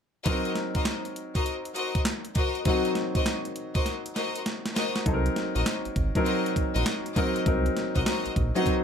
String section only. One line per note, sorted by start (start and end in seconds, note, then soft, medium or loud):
0.25 0.48 F#4 medium
0.25 0.48 A#4 medium
0.25 0.48 C5 medium
0.25 0.48 D#5 loud
0.75 0.91 F#4 medium
0.75 0.91 A#4 medium
0.75 0.91 C5 medium
0.75 0.91 D#5 medium
1.35 1.51 F#4 medium
1.35 1.51 A#4 medium
1.35 1.51 C5 medium
1.35 1.51 D#5 medium
1.75 1.98 F#4 medium
1.75 1.98 A#4 medium
1.75 1.98 C5 medium
1.75 1.98 D#5 medium
2.36 2.58 F#4 medium
2.36 2.58 A#4 medium
2.36 2.58 C5 medium
2.36 2.58 D#5 medium
2.65 2.88 F#4 loud
2.65 2.88 A#4 medium
2.65 2.88 C5 medium
2.65 2.88 D#5 loud
3.15 3.31 F#4 medium
3.15 3.31 A#4 medium
3.15 3.31 C5 medium
3.15 3.32 D#5 medium
3.75 3.91 F#4 medium
3.75 3.91 A#4 medium
3.75 3.91 C5 medium
3.75 3.91 D#5 medium
4.16 4.38 F#4 medium
4.16 4.38 A#4 medium
4.16 4.38 C5 medium
4.16 4.38 D#5 medium
4.75 4.98 F#4 medium
4.75 4.98 A#4 medium
4.75 4.98 C5 medium
4.75 4.98 D#5 medium
5.55 5.71 F#4 medium
5.55 5.71 A#4 medium
5.55 5.71 C5 medium
5.55 5.71 D#5 medium
6.25 6.48 F#4 medium
6.25 6.48 A#4 medium
6.25 6.48 C5 medium
6.25 6.48 D#5 medium
6.75 6.91 F#4 medium
6.75 6.91 A#4 medium
6.75 6.91 C5 medium
6.75 6.91 D#5 medium
7.16 7.38 F#4 medium
7.16 7.38 A#4 medium
7.16 7.38 C5 medium
7.16 7.38 D#5 medium
7.95 8.04 F#4 medium
7.95 8.05 A#4 medium
7.95 8.05 C5 medium
7.95 8.05 D#5 medium
8.05 8.28 F#4 medium
8.05 8.28 A#4 medium
8.05 8.28 C5 medium
8.05 8.28 D#5 medium
8.55 8.71 F#4 medium
8.55 8.71 A#4 medium
8.55 8.71 C5 medium
8.55 8.71 D#5 medium